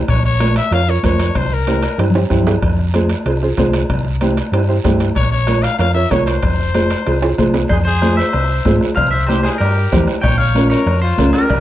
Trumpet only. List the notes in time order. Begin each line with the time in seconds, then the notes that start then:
0.09 C#5
0.25 C#5
0.57 E5
0.73 F5
0.90 C#5
1.06 C#5
1.37 C5
1.53 A#4
5.16 C#5
5.32 C#5
5.63 F5
5.78 F5
5.94 E5
6.11 C#5
6.26 C5
7.71 G#4
7.87 G#4
8.18 C5
8.96 C5
9.13 C5
9.27 G4
9.44 G#4
9.60 G4
10.23 C#5
10.39 C#5
10.70 A#4
11.02 F4
11.33 G4